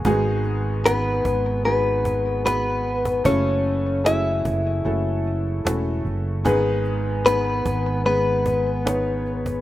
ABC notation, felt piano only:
X:1
M:4/4
L:1/8
Q:1/4=75
K:G#m
V:1 name="Felt piano"
[G,B,DFG]2 [G,B,DFG]2 [G,B,DFG]2 [G,B,DFB]2 | [=A,CEF=A]2 [A,CEFG]2 [A,CEFA]2 [A,CEFA]2 | [G,B,DGB]2 [G,B,DGB]2 [G,B,DGB]2 [G,B,DGc]2 |]
V:2 name="Felt piano" clef=bass
[G,,D,]3 z4 z | C,3 z4 z | [G,,D,]3 z4 z |]